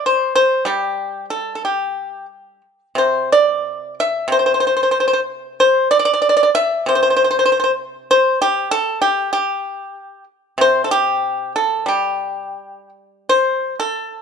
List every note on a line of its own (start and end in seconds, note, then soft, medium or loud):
0.06 0.34 C5 medium
0.35 0.64 C5 medium
0.65 2.61 G3 medium
0.65 1.25 G4 medium
1.30 1.53 A4 medium
1.55 1.62 A4 soft
1.65 2.25 G4 soft
2.95 4.27 C3 soft
2.95 3.29 C5 soft
3.32 3.94 D5 medium
4.00 4.29 E5 medium
4.28 6.23 C3 medium
4.32 4.38 C5 soft
4.39 4.45 C5 soft
4.46 4.52 C5 soft
4.54 4.59 C5 soft
4.60 4.66 C5 soft
4.67 4.74 C5 soft
4.77 4.82 C5 soft
4.83 4.89 C5 soft
4.91 4.97 C5 soft
5.00 5.06 C5 soft
5.08 5.12 C5 soft
5.13 5.20 C5 soft
5.60 5.89 C5 medium
5.91 5.98 D5 medium
5.99 6.04 D5 medium
6.05 6.12 D5 medium
6.14 6.20 D5 soft
6.22 6.28 D5 soft
6.29 6.35 D5 soft
6.37 6.42 D5 medium
6.43 6.49 D5 soft
6.55 6.84 E5 medium
6.86 8.73 C3 medium
6.86 6.94 C5 soft
6.95 7.01 C5 soft
7.03 7.09 C5 soft
7.10 7.15 C5 soft
7.17 7.23 C5 soft
7.24 7.29 C5 soft
7.31 7.37 C5 soft
7.39 7.44 C5 soft
7.46 7.51 C5 soft
7.52 7.58 C5 soft
7.60 7.63 C5 soft
7.64 7.71 C5 soft
8.11 8.40 C5 medium
8.42 8.71 G4 medium
8.71 9.01 A4 medium
9.02 9.31 G4 medium
9.33 10.23 G4 medium
10.58 12.56 C3 soft
10.58 10.83 C5 medium
10.84 10.91 A4 medium
10.91 11.52 G4 medium
11.56 11.86 A4 medium
11.86 13.92 G3 soft
11.86 12.89 G4 soft
13.29 13.74 C5 medium
13.80 14.22 A4 medium